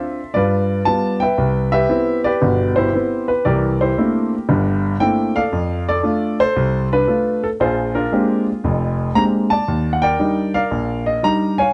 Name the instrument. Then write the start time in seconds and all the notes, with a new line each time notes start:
grand piano
Already playing: C4 D4 F4 A4 C5 E5
0.34 G2 F4 B4 D5
0.85 G3 B3 F4 A5
1.20 B4 E5 G5
1.38 C2
1.72 G4 B4 E5
1.89 B3 C4 E4
2.24 G4 B4 D5
2.41 G1 B2
2.76 E4 G4 C5
2.94 B3 C4 E4
3.28 B4
3.45 C2 E3 G4 A#4 D5
3.81 E4 G4 C5
3.98 A3 A#3 C4 D4 E4
4.49 G1 G2
5.00 A3 A#3 C4 D4 E4 G5
5.36 A4 D5 F5
5.52 F2
5.89 A4 D5
6.03 A3 D4 F4
6.40 A4 C5
6.56 C2
6.93 D4 B4
7.07 A3 D4 F4
7.44 A4
7.60 A#1 F4 G#4 C5
7.95 D4 F4 A#4
8.12 G#3 A#3 C4 D4 G4
8.64 F1 F2
9.15 G#3 A#3 C4 D4 G4 A#5
9.50 D5 A5
9.68 D#2
9.93 F#5
10.02 A#4 D5 G5
10.20 G3 D4 D#4
10.54 A#4 D5 F5
10.71 A#1
11.06 D#5
11.23 G3 D4 D#4 A#5
11.58 C#5 F5 G#5